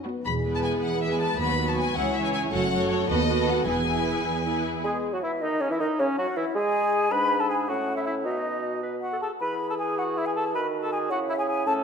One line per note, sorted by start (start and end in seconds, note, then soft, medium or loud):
0.00 0.14 F#2 soft
0.06 0.21 F#3 soft
0.06 0.25 B3 soft
0.06 0.21 B3 soft
0.06 0.21 F#4 soft
0.06 0.21 B4 soft
0.25 0.61 E1 soft
0.25 0.77 E2 soft
0.25 1.37 G#4 soft
0.25 0.33 B5 medium
0.45 1.01 G#3 soft
0.45 1.01 B3 soft
0.45 1.02 E4 soft
0.45 1.01 B4 soft
0.55 0.59 A5 medium
0.63 0.71 G#5 medium
0.83 1.34 E2 soft
0.83 1.02 F#5 medium
1.02 1.40 G#3 soft
1.02 1.39 B3 soft
1.02 1.40 E4 soft
1.02 1.39 B4 soft
1.02 1.12 E5 soft
1.12 1.22 G#5 soft
1.20 1.39 A5 medium
1.39 1.75 D#2 medium
1.39 1.90 D#2 medium
1.39 1.57 F#3 soft
1.39 1.57 B3 soft
1.39 1.96 B3 soft
1.39 1.97 F#4 soft
1.39 1.58 F#4 soft
1.39 1.58 B4 soft
1.39 1.67 B5 medium
1.59 1.96 F#3 soft
1.59 1.95 B3 soft
1.59 1.96 F#4 soft
1.59 1.96 B4 soft
1.68 1.77 A5 medium
1.77 1.96 G#5 medium
1.96 2.31 C#2 soft
1.96 2.46 C#2 medium
1.96 2.14 E3 soft
1.96 3.09 C#4 soft
1.96 2.52 E4 soft
1.96 2.14 E4 soft
1.96 2.14 G#4 soft
1.96 2.14 C#5 soft
1.96 2.15 F#5 medium
2.15 2.51 E3 soft
2.15 2.51 E4 soft
2.15 2.51 G#4 soft
2.15 2.51 C#5 soft
2.15 2.24 E5 medium
2.24 2.28 G#5 medium
2.33 2.41 G#5 medium
2.52 2.87 F#1 medium
2.52 3.02 F#2 medium
2.52 2.70 A3 soft
2.52 2.70 F#4 soft
2.52 2.70 A4 soft
2.52 3.65 A4 soft
2.52 2.70 C#5 soft
2.52 2.89 F#5 medium
2.71 3.08 A3 soft
2.71 3.08 F#4 soft
2.71 3.07 A4 soft
2.71 3.08 C#5 soft
2.90 3.08 C#5 medium
3.08 3.60 D#2 medium
3.08 3.45 D#2 medium
3.08 3.27 B3 soft
3.08 4.65 B3 medium
3.08 3.27 F#4 soft
3.08 3.26 A4 soft
3.08 3.26 B4 soft
3.08 3.46 D#5 medium
3.27 3.66 B3 soft
3.27 3.66 F#4 soft
3.27 3.66 A4 soft
3.27 3.65 B4 soft
3.48 3.67 F#5 medium
3.66 4.03 E1 soft
3.66 4.19 E2 medium
3.66 3.86 B3 soft
3.66 3.86 E4 soft
3.66 3.85 G#4 soft
3.66 4.65 G#4 soft
3.66 3.85 B4 soft
3.66 4.63 G#5 medium
3.86 4.44 B3 soft
3.86 4.44 E4 soft
3.86 4.44 G#4 soft
3.86 4.44 B4 soft
4.26 4.78 E2 soft
4.45 4.84 B3 soft
4.45 4.84 E4 soft
4.45 4.84 G#4 soft
4.45 4.84 B4 soft
4.84 5.15 G#3 medium
4.84 5.15 G#4 medium
4.84 4.98 G#4 medium
4.84 4.90 G#5 medium
5.13 5.25 F#3 medium
5.13 5.22 F#4 medium
5.13 5.18 F#4 medium
5.13 5.22 F#5 medium
5.22 5.44 E3 medium
5.22 5.32 E4 medium
5.22 5.43 E5 medium
5.41 5.63 D#3 medium
5.41 5.62 D#4 medium
5.41 5.63 D#4 medium
5.41 5.62 D#5 medium
5.61 5.70 C#3 medium
5.61 5.72 C#4 medium
5.61 5.73 C#4 medium
5.61 5.70 C#5 medium
5.70 5.80 E3 medium
5.70 5.80 E4 medium
5.70 5.81 E4 medium
5.70 5.75 E5 medium
5.80 5.89 D#3 medium
5.80 6.02 D#4 medium
5.80 6.01 D#4 medium
5.80 5.86 D#5 medium
5.99 6.07 C#3 medium
5.99 6.20 C#4 medium
5.99 6.18 C#4 medium
5.99 6.05 C#5 medium
6.17 6.26 F#3 medium
6.17 6.27 F#4 medium
6.17 6.39 F#4 medium
6.17 6.38 F#5 medium
6.37 6.45 E3 medium
6.37 6.45 E4 medium
6.37 6.57 E4 medium
6.37 6.55 E5 medium
6.55 7.10 G#3 medium
6.55 7.13 G#4 medium
6.55 7.12 G#4 medium
6.55 7.13 G#5 medium
7.11 7.70 G#2 medium
7.11 7.65 D4 medium
7.11 7.42 B4 medium
7.11 7.41 B5 medium
7.40 7.50 A4 medium
7.40 7.49 A5 medium
7.49 7.70 G#4 medium
7.49 7.56 G#5 medium
7.68 8.27 A2 medium
7.68 8.27 C#4 soft
7.68 7.96 F#4 medium
7.68 7.96 F#5 medium
7.96 8.06 E4 medium
7.96 8.01 E5 medium
8.05 8.15 E4 medium
8.05 8.11 E5 medium
8.23 9.22 B2 soft
8.23 8.82 D#4 soft
8.23 8.79 F#4 soft
8.23 8.33 D#5 medium
8.31 8.39 E5 soft
8.38 8.82 D#5 medium
8.83 8.96 B4 soft
9.01 9.21 F#4 soft
9.01 9.20 F#5 medium
9.13 9.17 A4 soft
9.21 9.31 G#4 soft
9.21 9.31 A4 soft
9.21 9.27 A5 medium
9.41 10.56 E3 medium
9.41 10.56 G#4 medium
9.41 9.54 B4 medium
9.41 9.69 B5 medium
9.70 9.74 A4 medium
9.70 9.74 A5 medium
9.79 10.00 G#4 medium
9.79 9.97 G#5 medium
9.98 10.19 F#4 medium
9.98 10.04 F#5 medium
10.16 10.26 E4 medium
10.16 10.27 E5 medium
10.26 10.31 G#4 medium
10.26 10.35 G#5 medium
10.36 10.44 A4 medium
10.36 10.54 A5 medium
10.55 11.12 D#3 medium
10.55 11.13 F#4 soft
10.55 10.68 B4 medium
10.55 10.61 B5 medium
10.83 10.92 A4 medium
10.83 10.92 A5 medium
10.92 11.10 G#4 medium
10.92 10.98 G#5 medium
11.10 11.66 C#3 medium
11.10 11.69 E4 medium
11.10 11.19 F#4 medium
11.10 11.16 F#5 medium
11.29 11.34 E4 medium
11.29 11.38 E5 medium
11.38 11.48 G#4 medium
11.38 11.43 G#5 medium
11.48 11.69 G#4 medium
11.48 11.66 G#5 medium
11.67 11.84 A2 medium
11.67 11.84 C#4 medium
11.67 11.84 A4 medium
11.67 11.73 A5 medium